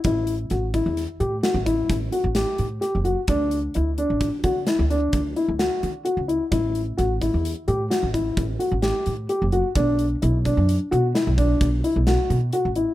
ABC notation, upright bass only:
X:1
M:7/4
L:1/16
Q:1/4=130
K:D
V:1 name="Upright bass" clef=bass
A,,,4 A,,,3 E,,2 z A,,2 z A,,,3 A,,,2 z A,,,2 z A,,2 z F,,,2 z | D,,4 D,,3 A,,,2 z D,2 z D,,3 D,,2 z D,,2 z D,2 z C,,2 z | A,,,4 A,,,3 E,,2 z A,,2 z A,,,3 A,,,2 z A,,,2 z A,,2 z F,,,2 z | B,,,4 B,,,3 F,,2 z B,,2 z B,,,3 B,,,2 z B,,,2 z B,,2 z A,,,2 z |]